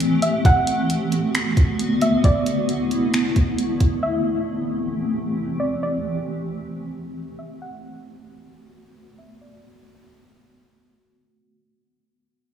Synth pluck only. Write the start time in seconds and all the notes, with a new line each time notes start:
Already playing: D5
0.22 E5
0.46 F#5
2.02 E5
2.25 D5
4.03 E5
5.60 D5
5.83 D5
7.39 E5
7.62 F#5
9.18 E5
9.41 D5